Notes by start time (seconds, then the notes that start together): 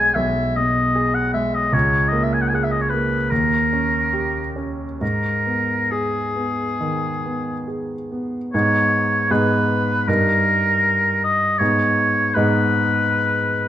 Already playing: B1 G#3 G#4 G#5
0.15 B1 E5
0.56 B2 D#5
0.95 G#4
1.14 F#5
1.34 G#3 E5
1.54 D#5
1.73 C#2 C#5
2.08 D#5
2.12 A#3
2.23 E5
2.33 G#5
2.42 F#5
2.49 G#5
2.54 G#4 F#5
2.63 E5
2.71 D#5
2.81 C#5
2.90 A#3 B4
3.30 D#2 A#4
3.73 C#4
4.13 G4
4.56 C#4
5.01 G#2 A#4
5.46 B3
5.91 G#4
6.36 B3
6.81 D#3
7.26 B3
7.68 G#4
8.12 B3
8.53 G#2 B3 D#4 G#4 C#5
9.31 G#2 B3 D#4 G#4 B4
10.08 G2 D#4 A#4
11.24 D#5
11.59 G#2 B3 D#4 G#4 C#5
12.34 G#2 B3 D#4 G#4 B4